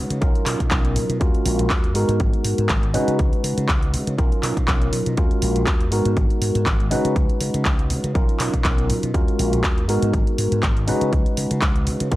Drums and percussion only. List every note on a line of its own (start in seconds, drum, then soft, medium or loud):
0.10 closed hi-hat medium
0.22 kick loud
0.22 closed hi-hat medium
0.35 closed hi-hat soft
0.46 clap medium
0.46 open hi-hat loud
0.60 kick medium
0.60 closed hi-hat medium
0.71 kick loud
0.71 clap loud
0.71 closed hi-hat medium
0.85 closed hi-hat soft
0.96 open hi-hat loud
1.10 closed hi-hat medium
1.21 kick loud
1.21 closed hi-hat medium
1.35 closed hi-hat soft
1.46 open hi-hat loud
1.59 closed hi-hat medium
1.70 kick loud
1.70 clap loud
1.70 closed hi-hat medium
1.84 closed hi-hat soft
1.95 open hi-hat loud
2.09 closed hi-hat medium
2.20 kick loud
2.20 closed hi-hat medium
2.33 closed hi-hat soft
2.44 open hi-hat loud
2.58 closed hi-hat soft
2.69 kick loud
2.69 clap loud
2.69 closed hi-hat medium
2.83 closed hi-hat soft
2.94 open hi-hat loud
3.08 closed hi-hat medium
3.19 kick loud
3.19 closed hi-hat medium
3.33 closed hi-hat soft
3.44 open hi-hat loud
3.58 closed hi-hat medium
3.69 kick loud
3.69 clap loud
3.69 closed hi-hat medium
3.83 closed hi-hat soft
3.94 open hi-hat loud
4.07 closed hi-hat soft
4.18 kick loud
4.18 closed hi-hat medium
4.32 closed hi-hat soft
4.43 clap medium
4.43 open hi-hat loud
4.57 kick medium
4.57 closed hi-hat medium
4.68 kick loud
4.68 clap loud
4.68 closed hi-hat medium
4.82 closed hi-hat soft
4.93 open hi-hat loud
5.06 closed hi-hat medium
5.17 kick loud
5.17 closed hi-hat medium
5.31 closed hi-hat soft
5.42 open hi-hat loud
5.56 closed hi-hat medium
5.67 kick loud
5.67 clap loud
5.67 closed hi-hat medium
5.81 closed hi-hat soft
5.92 open hi-hat loud
6.05 closed hi-hat medium
6.17 kick loud
6.17 closed hi-hat medium
6.30 closed hi-hat soft
6.42 open hi-hat loud
6.55 closed hi-hat soft
6.66 kick loud
6.66 clap loud
6.66 closed hi-hat medium
6.80 closed hi-hat soft
6.91 open hi-hat loud
7.05 closed hi-hat medium
7.16 kick loud
7.16 closed hi-hat medium
7.30 closed hi-hat soft
7.41 open hi-hat loud
7.54 closed hi-hat medium
7.65 kick loud
7.65 clap loud
7.65 closed hi-hat medium
7.79 closed hi-hat soft
7.90 open hi-hat loud
8.04 closed hi-hat medium
8.15 kick loud
8.15 closed hi-hat medium
8.29 closed hi-hat soft
8.40 clap medium
8.40 open hi-hat loud
8.54 kick medium
8.54 closed hi-hat medium
8.64 kick loud
8.64 clap loud
8.64 closed hi-hat medium
8.78 closed hi-hat soft
8.90 open hi-hat loud
9.03 closed hi-hat medium
9.14 kick loud
9.14 closed hi-hat medium
9.28 closed hi-hat soft
9.39 open hi-hat loud
9.53 closed hi-hat medium
9.64 kick loud
9.64 clap loud
9.64 closed hi-hat medium
9.78 closed hi-hat soft
9.89 open hi-hat loud
10.02 closed hi-hat medium
10.13 kick loud
10.13 closed hi-hat medium
10.27 closed hi-hat soft
10.38 open hi-hat loud
10.52 closed hi-hat medium
10.63 kick loud
10.63 clap loud
10.63 closed hi-hat medium
10.77 closed hi-hat soft
10.88 open hi-hat loud
11.01 closed hi-hat medium
11.13 kick loud
11.13 closed hi-hat medium
11.26 closed hi-hat soft
11.37 open hi-hat loud
11.51 closed hi-hat medium
11.62 kick loud
11.62 clap loud
11.62 closed hi-hat medium
11.76 closed hi-hat soft
11.87 open hi-hat loud
12.00 closed hi-hat medium
12.12 kick loud
12.12 closed hi-hat medium